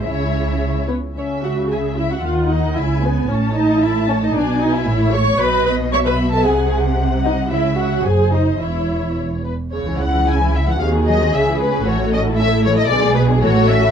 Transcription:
<<
  \new Staff \with { instrumentName = "Violin section" } { \time 2/4 \key cis \minor \tempo 4 = 113 cis''4. r8 | e''4 e''4 | fis''4 gis''4 | a''4 a''4 |
gis''4 cis''4 | dis''4 e''4 | ges''2 | e''4 bis'4 |
cis''4. b'8 | cis''8 fis''8 gis''8 e''16 fis''16 | eis''8 ees''8 e''8 b'8 | cis''8 dis''8 e''8 cis''16 dis''16 |
d''8 b'8 cis''8 e''8 | }
  \new Staff \with { instrumentName = "Violin section" } { \time 2/4 \key cis \minor e''4. b'8 | cis''8 fis''8 gis''8 e''16 fis''16 | eis''8 dis''8 e''8 b'8 | cis''8 dis''8 e''8 cis''16 dis''16 |
d''8 dis''16 e''8. cis'''8 | b''8 b''8 cis'''16 b''8 a''16 | gis''8 r4 ees''8 | e''8 fis''8 gis''8 dis''8 |
e''4 r4 | r4 e'4 | gis'2 | fis'4 e'4 |
gis'4 fis'4 | }
  \new Staff \with { instrumentName = "Viola section" } { \time 2/4 \key cis \minor << { e'4. b8 | cis'8 fis'8 gis'8 e'16 fis'16 | eis'8 dis'8 e'8 b8 | cis'8 dis'8 e'8 cis'16 dis'16 |
d'8 dis'16 e'8. cis''8 | b'8 b'8 cis''16 b'8 a'16 | gis'8 r4 ees'8 | e'8 fis'8 gis'8 dis'8 |
e'4 r4 | e'2 | ges'4 gis'4 | a'2 |
gis'4 a'4 | } \\ { gis4. r8 | r2 | r2 | r2 |
r2 | r2 | r2 | r2 |
r2 | cis16 e16 gis16 e16 cis16 e16 gis16 e16 | c16 ees16 ges16 c'16 cis16 e16 gis16 cis'16 | e16 a16 cis'16 e'16 cis'16 a16 e16 a16 |
d16 gis16 b16 d'16 e16 a16 cis'16 e'16 | } >> }
  \new Staff \with { instrumentName = "Cello section" } { \clef bass \time 2/4 \key cis \minor cis4. r8 | cis2 | dis4 cis4 | a,2 |
b,4 a,4 | b,2 | c2 | cis4 fis,4 |
e,4. r8 | cis2 | ees4 cis4 | a,2 |
b,4 a,4 | }
  \new Staff \with { instrumentName = "Double bass section" } { \clef bass \time 2/4 \key cis \minor cis,4. r8 | cis,2 | dis,4 cis,4 | a,,2 |
b,,4 a,,4 | b,,2 | c,2 | cis,4 fis,,4 |
e,,4. r8 | cis,2 | ees,4 cis,4 | a,,2 |
b,,4 a,,4 | }
>>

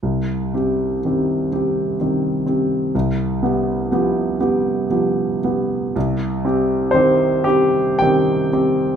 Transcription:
\new Staff \with { instrumentName = "Grand piano" } { \time 3/4 \key c \minor \tempo 4 = 60 << { r2. | r2. | r4 c''8 g'8 g''4 | } \\ { c,8 <c' g'>8 <ees c' g'>8 <c' g'>8 <ees c' g'>8 <c' g'>8 | c,8 <b g'>8 <f b g'>8 <b g'>8 <f b g'>8 <b g'>8 | c,8 <c' g'>8 <ees c' g'>8 c'8 <ees c' g'>8 <c' g'>8 | } >> }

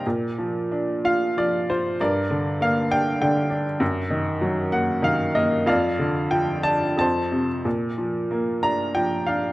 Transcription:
<<
  \new Staff \with { instrumentName = "Upright piano" } { \time 3/4 \key bes \major \tempo 4 = 94 << { r4. f''8 d''8 c''8 | d''4 f''8 g''8 g''8. r16 | r4. ges''8 f''8 ees''8 | f''4 g''8 a''8 a''8. r16 |
r4. bes''8 g''8 f''8 | } \\ { r2. | bes'4. r4. | r2. | d''4. r8 c''4 |
r2. | } >> }
  \new Staff \with { instrumentName = "Upright piano" } { \clef bass \time 3/4 \key bes \major bes,8 f8 d'8 f'8 f8 f'8 | g,8 d8 bes8 d'8 d8 d'8 | ges,8 ees8 ges8 bes8 ees8 bes8 | f,8 d8 f8 d'8 f,8 c8 |
bes,8 f8 bes8 d'8 f8 d'8 | }
>>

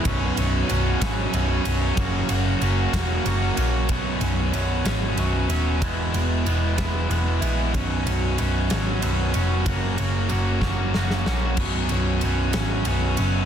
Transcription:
<<
  \new Staff \with { instrumentName = "Distorted electric guitar" } { \clef bass \time 6/8 \key fis \mixolydian \tempo 4. = 62 <b,, fis, b, fis cis'>8 <b, fis cis'>8 <fis, b, fis cis'>8 <b,, fis, b, fis cis'>8 <fis, b, fis cis'>4 | <fis, cis fis ais cis' fis'>8 <fis ais cis' fis'>8 <fis ais cis' fis'>8 <fis, cis fis ais cis' fis'>8 <fis ais cis' fis'>4 | <b,, fis, b, fis cis'>8 <b, fis cis'>8 <fis, b, fis cis'>8 <b, fis cis'>8 <fis, b, fis cis'>8 <b, fis cis'>8 | <e, b, e gis b e'>8 <e gis b e'>8 <e gis b e'>8 <e gis b e'>8 <e gis b e'>8 <e gis b e'>8 |
<b,, fis, b, fis cis'>8 <b, fis cis'>8 <fis, b, fis cis'>8 <b, fis cis'>8 <fis, b, fis cis'>8 <b, fis cis'>8 | <fis, cis fis ais cis' fis'>8 <fis ais cis' fis'>8 <fis ais cis' fis'>8 <fis ais cis' fis'>8 <fis ais cis' fis'>8 <fis ais cis' fis'>8 | <b,, fis, b, fis cis'>8 <b, fis cis'>8 <fis, b, fis cis'>8 <b, fis cis'>8 <fis, b, fis cis'>8 <b, fis cis'>8 | }
  \new Staff \with { instrumentName = "Overdriven electric guitar" } { \clef bass \time 6/8 \key fis \mixolydian <b,, fis, b, fis cis'>8 <b, fis cis'>8 <fis, b, fis cis'>8 <b, fis cis'>8 <fis, b, fis cis'>8 <b, fis cis'>8 | <fis, cis fis ais cis' fis'>8 <fis ais cis' fis'>8 <fis ais cis' fis'>8 <fis ais cis' fis'>8 <fis ais cis' fis'>8 <fis ais cis' fis'>8 | <b,, fis, b, fis cis'>8 <b, fis cis'>8 <fis, b, fis cis'>8 <b, fis cis'>8 <fis, b, fis cis'>8 <b, fis cis'>8 | <e, b, e gis b e'>8 <e gis b e'>8 <e gis b e'>8 <e gis b e'>8 <e gis b e'>8 <e gis b e'>8 |
<b,, fis, b, fis cis'>8 <b, fis cis'>8 <fis, b, fis cis'>8 <b, fis cis'>8 <fis, b, fis cis'>8 <b, fis cis'>8 | <fis, cis fis ais cis' fis'>8 <fis ais cis' fis'>8 <fis ais cis' fis'>8 <fis ais cis' fis'>8 <fis ais cis' fis'>8 <fis ais cis' fis'>8 | <b,, fis, b, fis cis'>8 <b, fis cis'>8 <fis, b, fis cis'>8 <b, fis cis'>8 <fis, b, fis cis'>8 <b, fis cis'>8 | }
  \new Staff \with { instrumentName = "Picked electric bass" } { \clef bass \time 6/8 \key fis \mixolydian b,,,8 b,,,8 b,,,8 gis,,8 b,,,8 b,,,8 | fis,,8 fis,,8 fis,,8 e,,8 fis,,8 ais,,8 | b,,,8 b,,,8 b,,,8 gis,,8 b,,,8 dis,,8 | e,,8 e,,8 e,,8 e,,8 e,,8 ais,,8 |
b,,,8 b,,,8 b,,,8 gis,,8 b,,,8 eis,,8 | fis,,8 fis,,8 fis,,8 fis,,8 fis,,8 ais,,8 | b,,,8 b,,,8 b,,,8 gis,,8 b,,,8 fis,,8 | }
  \new DrumStaff \with { instrumentName = "Drums" } \drummode { \time 6/8 <bd cymr>8 cymr8 cymr8 <bd cymr sn>8 cymr8 cymr8 | <bd cymr>8 cymr8 cymr8 <bd cymr sn>8 cymr8 cymr8 | <bd cymr>8 cymr8 cymr8 <cymr sn>8 cymr8 cymr8 | <bd cymr>8 cymr8 cymr8 <bd cymr sn>8 cymr8 cymr8 |
<bd cymr>8 cymr8 cymr8 <cymr sn>8 cymr8 cymr8 | <bd cymr>8 cymr8 cymr8 <bd sn>8 sn16 sn16 sn8 | <cymc bd>8 cymr8 cymr8 <cymr sn>8 cymr8 cymr8 | }
>>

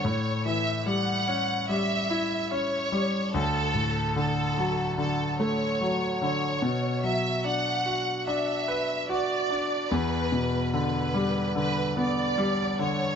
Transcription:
<<
  \new Staff \with { instrumentName = "Violin section" } { \time 4/4 \key b \minor \tempo 4 = 73 cis''8 e''8 fis''4 e''4 cis''4 | a'4 a'4 a'8 cis''4 cis''8~ | cis''8 e''8 fis''4 e''4 d''4 | b'4 b'4 b'8 d''4 cis''8 | }
  \new Staff \with { instrumentName = "Grand piano" } { \clef bass \time 4/4 \key b \minor a,8 e8 g8 cis'8 g8 e'8 cis'8 g8 | d,8 a,8 d8 fis8 d8 a8 fis8 d8 | b,8 fis8 d'8 fis'8 d'8 b'8 fis'8 d'8 | e,8 b,8 d8 g8 d8 b8 g8 d8 | }
>>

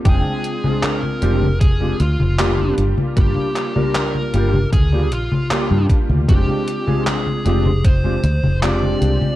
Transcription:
<<
  \new Staff \with { instrumentName = "Lead electric guitar" } { \time 4/4 \key f \dorian \tempo 4 = 77 aes'4 bes'4 aes'8 f'4 r8 | g'4 bes'4 aes'8 f'4 r8 | g'4 aes'4 c''4 d''4 | }
  \new Staff \with { instrumentName = "Electric grand piano" } { \time 4/4 \key f \dorian <aes c' d' f' g''>8. <aes c' d' f' aes'>8. <aes c' d' f' g'>16 r8 <aes c' d' f' g'>16 r8 <g bes d' f' g'>4 | <g bes d' f' g'>8. <g bes d' f' bes'>8. <g bes d' f' g'>16 r8 <g bes d' f' g'>16 r8 <g bes d' f' g'>4 | <aes c' d' f' g'>8. <aes c' d' f' aes'>8. <aes c' d' f' g'>16 r8 <aes c' d' f' g'>16 r8 <aes c' d' f' g'>4 | }
  \new Staff \with { instrumentName = "Fingered electric bass" } { \clef bass \time 4/4 \key f \dorian f,,16 r4 r16 f,,4 d,16 f,,8. g,,16 r16 | g,,16 r4 r16 g,,8 d,8 bes,,16 r8 g,16 r16 d,16 | f,,16 r4 r16 f,,4 d,16 f,,8. c,16 r16 | }
  \new DrumStaff \with { instrumentName = "Drums" } \drummode { \time 4/4 <cgho hh bd>16 cgho16 hh16 cgho16 <hc cgho hh>16 cgho16 hh16 cgho16 <cgho hh bd>16 cgho16 hh16 cgho16 <hc cgho hh>16 cgho16 hh16 cgho16 | <cgho hh bd>16 cgho16 <hc hh>16 cgho16 <hc cgho hh>16 cgho16 hh16 cgho16 <cgho hh bd>16 cgho16 hh16 cgho16 <hc cgho hh>16 cgho16 <hh bd>16 cgho16 | <cgho hh bd>16 cgho16 hh16 cgho16 <hc cgho hh>16 cgho16 hh16 cgho16 <cgho hh bd>16 cgho16 hh16 cgho16 <hc cgho hh>16 cgho16 hh16 cgho16 | }
>>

